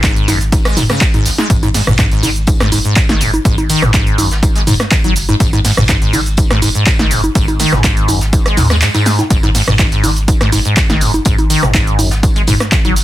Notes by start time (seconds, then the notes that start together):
Already playing: G#1
0.03 G#2, kick, snare, clap, closed hi-hat, tambourine, high conga, shaker
0.16 closed hi-hat, shaker
0.28 G#1 F#2, snare, open hi-hat, tambourine, high conga, shaker
0.41 snare, closed hi-hat, shaker
0.52 kick, snare, closed hi-hat, tambourine, high conga, shaker
0.65 G#3, cross-stick, snare, closed hi-hat, tambourine, shaker
0.77 F#1 G#2, snare, mid tom, open hi-hat, high conga, shaker
0.89 C#3, cross-stick, snare, closed hi-hat, tambourine, shaker
1.01 B3, kick, snare, clap, closed hi-hat, shaker
1.14 G#2, snare, closed hi-hat, high conga, shaker
1.25 G#1, snare, open hi-hat, tambourine, shaker
1.38 G#3, snare, closed hi-hat, high conga, shaker
1.50 G#1 G#2, kick, closed hi-hat, tambourine, shaker
1.63 G#2, snare, closed hi-hat, high conga, shaker
1.74 G#2, snare, open hi-hat, shaker
1.87 G#1 G#2, cross-stick, closed hi-hat, mid tom, shaker
1.98 G#2, kick, snare, clap, closed hi-hat, tambourine, high conga, shaker
2.12 G#2, snare, closed hi-hat, shaker
2.23 G#1 D#3, open hi-hat, tambourine, high conga, shaker
2.36 closed hi-hat, shaker
2.47 kick, closed hi-hat, tambourine, high conga, shaker
2.60 G#2, cross-stick, snare, closed hi-hat, shaker
2.72 F#1 G#2, open hi-hat, tambourine, high conga, shaker
2.85 G#2, closed hi-hat, shaker
2.96 kick, snare, clap, closed hi-hat, tambourine, shaker
3.09 F#1 D#3, snare, closed hi-hat, high conga, shaker
3.21 G#2, open hi-hat, tambourine, shaker
3.34 closed hi-hat, high conga, shaker
3.45 G#1 G#2, kick, closed hi-hat, tambourine, shaker
3.58 closed hi-hat, high conga, shaker
3.69 D#3, open hi-hat, tambourine, shaker
3.82 G#1 G#2, cross-stick, snare, closed hi-hat, mid tom, shaker
3.93 kick, snare, clap, closed hi-hat, tambourine, high conga, shaker
4.07 closed hi-hat, shaker
4.18 G#1 F#2, open hi-hat, tambourine, high conga, shaker
4.31 snare, closed hi-hat, shaker
4.43 kick, closed hi-hat, tambourine, high conga, shaker
4.55 G#3, snare, closed hi-hat, shaker
4.67 F#1 G#2, mid tom, open hi-hat, tambourine, high conga, shaker
4.80 cross-stick, snare, closed hi-hat, shaker
4.91 D#3, kick, snare, clap, closed hi-hat, tambourine, shaker
5.04 F#1 F#3, snare, closed hi-hat, high conga, shaker
5.16 snare, open hi-hat, tambourine, shaker
5.29 G#2, closed hi-hat, high conga, shaker
5.40 G#1 G#2, kick, closed hi-hat, tambourine, shaker
5.53 G#2, snare, closed hi-hat, high conga, shaker
5.64 G#2, snare, open hi-hat, shaker
5.77 G#1 G#2, cross-stick, closed hi-hat, mid tom, shaker
5.88 G#2, kick, snare, clap, closed hi-hat, tambourine, high conga, shaker
6.01 G#2, snare, closed hi-hat, shaker
6.13 G#1 D#3, open hi-hat, tambourine, high conga, shaker
6.26 closed hi-hat, shaker
6.37 kick, closed hi-hat, tambourine, high conga, shaker
6.51 G#2, cross-stick, snare, closed hi-hat, shaker
6.62 F#1 G#2, open hi-hat, tambourine, high conga, shaker
6.75 G#2, closed hi-hat, shaker
6.86 kick, snare, clap, closed hi-hat, tambourine, shaker
6.99 F#1 D#3, snare, closed hi-hat, high conga, shaker
7.11 G#2, open hi-hat, tambourine, shaker
7.24 closed hi-hat, high conga, shaker
7.35 G#1 G#2, kick, closed hi-hat, tambourine, shaker
7.48 closed hi-hat, high conga, shaker
7.59 D#3, snare, open hi-hat, tambourine, shaker
7.72 G#1 G#2, cross-stick, snare, closed hi-hat, mid tom, shaker
7.84 G#2, kick, snare, clap, closed hi-hat, tambourine, high conga, shaker
7.97 closed hi-hat, shaker
8.08 G#1 F#2, open hi-hat, tambourine, high conga, shaker
8.21 snare, closed hi-hat, shaker
8.33 kick, closed hi-hat, tambourine, high conga, shaker
8.46 G#3, cross-stick, snare, closed hi-hat, shaker
8.57 D#2 G#2, snare, mid tom, open hi-hat, tambourine, high conga, shaker
8.70 G#3, cross-stick, snare, closed hi-hat, tambourine, shaker
8.82 G#2, snare, clap, closed hi-hat, tambourine, shaker
8.94 G#2, snare, closed hi-hat, tambourine, high conga, shaker
9.06 snare, open hi-hat, tambourine, shaker
9.19 A#2, snare, closed hi-hat, high conga, shaker
9.30 G#1 G#2, kick, closed hi-hat, tambourine, shaker
9.43 G#2, snare, closed hi-hat, high conga, shaker
9.55 G#2, snare, open hi-hat, shaker
9.68 G#1 G#2, cross-stick, closed hi-hat, mid tom, shaker
9.79 G#2, kick, snare, clap, closed hi-hat, tambourine, high conga, shaker
9.91 G#2, snare, closed hi-hat, shaker
10.03 G#1 D#3, open hi-hat, tambourine, high conga, shaker
10.16 closed hi-hat, shaker
10.28 kick, closed hi-hat, tambourine, high conga, shaker
10.41 G#2, cross-stick, snare, closed hi-hat, shaker
10.52 F#1 G#2, open hi-hat, tambourine, high conga, shaker
10.65 G#2, closed hi-hat, shaker
10.77 kick, snare, clap, closed hi-hat, tambourine, shaker
10.90 F#1 D#3, snare, closed hi-hat, high conga, shaker
11.01 G#2, open hi-hat, tambourine, shaker
11.14 closed hi-hat, high conga, shaker
11.25 G#1 G#2, kick, closed hi-hat, tambourine, shaker
11.39 closed hi-hat, high conga, shaker
11.50 D#3, open hi-hat, tambourine, shaker
11.63 G#1 G#2, cross-stick, snare, closed hi-hat, mid tom, shaker
11.74 G#2, kick, snare, clap, closed hi-hat, tambourine, high conga, shaker
11.87 closed hi-hat, shaker
11.99 G#1 F#2, open hi-hat, tambourine, high conga, shaker
12.11 snare, closed hi-hat, shaker
12.23 kick, closed hi-hat, tambourine, high conga, shaker
12.35 G#3, snare, closed hi-hat, shaker
12.47 F#1 G#2, mid tom, open hi-hat, tambourine, high conga, shaker
12.60 cross-stick, snare, closed hi-hat, shaker
12.72 D#3, kick, snare, clap, closed hi-hat, tambourine, shaker
12.85 F#1 F#3, snare, closed hi-hat, high conga, shaker
12.96 snare, open hi-hat, tambourine, shaker